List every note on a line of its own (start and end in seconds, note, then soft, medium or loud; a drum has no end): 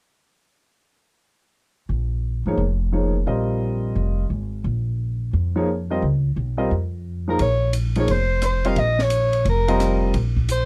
1.89 2.42 A#1 medium
2.46 2.57 G#1 medium
2.46 2.57 F3 soft
2.46 2.57 A#3 soft
2.46 2.58 D#4 soft
2.46 2.58 G#4 soft
2.46 2.58 C#5 medium
2.58 3.23 F1 medium
2.92 3.13 F3 soft
2.92 3.13 A#3 soft
2.92 3.13 D#4 soft
2.92 3.13 G#4 soft
2.92 3.13 C#5 soft
3.26 3.92 A#1 medium
3.26 4.23 G3 soft
3.26 4.23 C4 soft
3.26 4.23 F4 soft
3.26 4.23 A#4 soft
3.26 4.23 D#5 medium
3.96 4.28 F1 medium
4.30 4.62 G#1 medium
4.64 5.30 A#1 medium
5.33 5.99 F2 medium
5.56 5.67 F3 medium
5.56 5.67 A#3 soft
5.56 5.67 D#4 soft
5.56 5.67 G#4 soft
5.56 5.67 C#5 medium
5.90 6.01 G3 soft
5.90 6.01 C4 medium
5.90 6.02 F4 soft
5.90 6.01 A#4 soft
5.90 6.02 D#5 medium
6.02 6.34 C#2 medium
6.36 6.69 B1 medium
6.57 6.69 G3 medium
6.57 6.69 C4 soft
6.57 6.70 F4 soft
6.57 6.70 A#4 soft
6.57 6.70 D#5 medium
6.71 7.36 F2 medium
7.28 7.39 F3 soft
7.28 7.39 A#3 soft
7.28 7.39 D#4 soft
7.28 7.39 G#4 soft
7.28 7.39 A#4 medium
7.28 7.40 A#4 medium
7.39 8.05 A#1 medium
7.39 7.73 C#5 medium
7.39 ride soft
7.73 hi-hat pedal soft
7.73 ride medium
7.95 8.07 F3 medium
7.95 8.08 A#3 medium
7.95 8.07 D#4 medium
7.95 8.08 G#4 medium
7.95 8.08 C#5 medium
7.95 ride soft
7.99 8.13 C#5 medium
8.08 8.73 F1 medium
8.08 8.44 C5 medium
8.08 ride soft
8.42 8.68 C5 medium
8.42 cross-stick soft
8.42 hi-hat pedal soft
8.42 ride medium
8.64 8.76 G3 medium
8.64 8.76 C4 medium
8.64 8.76 F4 medium
8.64 8.76 A#4 soft
8.64 8.77 D#5 medium
8.64 8.80 F5 medium
8.64 ride soft
8.76 9.42 A#1 medium
8.76 9.04 D#5 medium
8.76 ride soft
8.99 9.47 C#5 medium
8.99 snare soft
9.10 hi-hat pedal soft
9.10 ride medium
9.33 ride soft
9.45 10.11 F1 medium
9.45 10.00 A#4 medium
9.45 ride soft
9.68 10.12 G3 medium
9.68 10.12 C4 medium
9.68 10.12 F4 medium
9.68 10.12 A#4 medium
9.68 10.12 D#5 medium
9.68 ride soft
9.80 cross-stick soft
9.80 hi-hat pedal soft
9.80 ride soft
10.14 10.65 A#1 medium
10.14 ride soft
10.37 kick medium
10.48 10.65 C5 medium
10.48 hi-hat pedal medium
10.48 ride medium